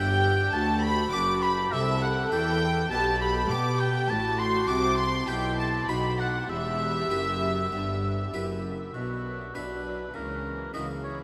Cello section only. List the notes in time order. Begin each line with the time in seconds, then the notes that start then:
Already playing: G2
0.53 D2
1.13 F#2
1.73 C3
2.32 E3
2.92 B2
3.51 B3
4.10 A2
4.69 C3
5.28 B2
5.89 B2
6.50 E2
7.12 F#2
7.73 G2
8.33 F#2
8.95 B2
9.55 B2
10.15 C#3
10.74 C#3